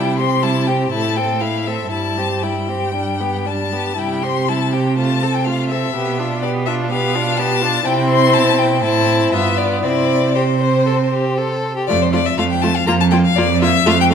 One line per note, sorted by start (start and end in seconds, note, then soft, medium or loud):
0.00 0.90 C3 medium
0.00 0.21 G3 soft
0.00 0.21 E4 soft
0.00 0.17 G5 medium
0.18 0.45 C4 soft
0.18 0.44 G4 soft
0.18 0.45 C6 medium
0.43 0.70 G3 soft
0.43 0.69 E4 soft
0.43 0.68 A5 medium
0.66 0.93 C4 soft
0.66 0.91 G4 soft
0.66 0.90 G5 medium
0.90 1.89 A2 medium
0.90 1.19 A3 soft
0.90 1.19 E4 soft
0.90 1.18 A5 medium
1.16 1.43 C4 soft
1.16 1.43 A4 soft
1.16 1.42 G5 medium
1.41 1.68 A3 soft
1.41 1.69 E4 soft
1.41 1.68 F5 medium
1.66 1.91 C4 soft
1.66 1.91 A4 soft
1.66 1.91 E5 medium
1.91 3.73 G2 soft
1.91 2.19 G3 soft
1.91 2.20 E4 soft
1.91 2.45 A5 medium
2.18 2.45 C4 soft
2.18 2.45 G4 soft
2.43 2.70 G3 soft
2.43 2.70 E4 soft
2.43 3.49 G5 soft
2.69 2.94 C4 soft
2.69 2.94 G4 soft
2.95 3.22 G3 soft
2.95 3.22 D4 soft
3.20 3.48 B3 soft
3.20 3.48 G4 soft
3.46 3.74 G3 soft
3.46 3.74 D4 soft
3.46 4.00 A5 medium
3.72 3.97 B3 soft
3.72 3.96 G4 soft
3.97 5.91 C3 soft
3.97 4.25 G3 soft
3.97 4.24 E4 soft
3.97 4.24 G5 medium
4.23 4.50 C4 soft
4.23 4.51 G4 soft
4.23 4.50 C6 medium
4.48 4.75 G3 soft
4.48 4.76 E4 soft
4.48 4.74 A5 medium
4.73 4.98 C4 soft
4.73 4.97 G4 soft
4.73 4.97 G5 soft
4.97 5.24 A3 soft
4.97 5.25 F4 soft
4.97 5.36 A5 medium
5.22 5.48 C4 soft
5.22 5.48 A4 soft
5.35 5.46 G5 medium
5.45 5.72 A3 soft
5.45 5.73 F4 soft
5.45 5.68 F5 medium
5.69 5.94 C4 soft
5.69 5.95 A4 soft
5.69 6.40 E5 medium
5.95 7.82 B2 medium
5.95 6.20 B3 soft
5.95 6.21 G4 soft
6.19 6.44 D4 soft
6.19 6.45 F4 soft
6.42 6.69 B3 soft
6.42 6.69 G4 soft
6.42 6.50 D5 medium
6.66 6.91 D4 soft
6.66 6.92 F4 soft
6.66 6.74 E5 medium
6.90 7.17 B3 medium
6.90 7.17 G4 soft
6.90 7.39 F5 medium
7.15 7.40 D4 soft
7.15 7.40 F4 soft
7.37 7.64 B3 soft
7.37 7.63 G4 soft
7.37 7.87 A5 medium
7.61 7.86 D4 soft
7.61 7.85 F4 medium
7.85 8.36 C3 medium
7.85 8.80 C4 medium
7.85 8.79 E4 medium
7.85 8.09 G5 medium
8.10 8.35 C6 medium
8.34 8.84 B2 medium
8.34 8.60 A5 medium
8.58 8.83 G5 medium
8.83 9.32 A2 medium
8.83 9.35 C4 medium
8.83 9.35 E4 medium
8.83 9.32 A5 medium
9.32 9.84 G2 medium
9.32 9.85 B3 medium
9.32 9.83 F4 medium
9.32 9.59 E5 medium
9.58 9.82 D5 medium
9.83 11.68 C3 medium
9.83 10.35 C4 medium
9.83 10.34 E4 medium
9.83 10.37 D5 medium
10.35 11.66 C4 soft
10.35 10.43 G4 medium
10.35 11.64 C5 medium
10.60 10.86 C5 medium
10.86 10.94 A4 medium
11.12 11.40 G4 soft
11.38 11.76 A4 medium
11.77 11.88 G4 soft
11.87 12.33 F2 medium
11.87 11.98 A3 medium
11.87 11.97 F4 medium
11.87 12.03 D5 medium
12.02 12.12 C5 medium
12.12 12.22 A3 soft
12.12 12.21 F4 medium
12.12 12.27 D5 medium
12.26 12.38 E5 medium
12.38 12.82 F2 medium
12.38 12.46 A3 soft
12.38 12.46 F4 medium
12.38 12.44 F5 medium
12.50 12.63 G5 medium
12.62 12.71 A3 medium
12.62 12.71 F4 medium
12.62 12.77 A5 medium
12.76 12.86 F5 medium
12.87 13.31 F2 medium
12.87 12.95 A#3 medium
12.87 12.96 F4 medium
12.87 12.92 A#5 medium
13.00 13.05 A5 medium
13.11 13.19 A#3 medium
13.11 13.21 F4 medium
13.11 13.16 G5 medium
13.25 13.38 F5 medium
13.36 13.81 F2 medium
13.36 13.45 A#3 medium
13.36 13.46 F4 medium
13.36 13.61 D5 medium
13.61 13.70 A#3 medium
13.61 13.70 F4 medium
13.61 13.88 E5 medium
13.86 14.14 F2 medium
13.86 13.94 A3 medium
13.86 13.94 F4 medium
13.86 13.99 F5 loud
14.01 14.05 G5 loud
14.10 14.14 A3 medium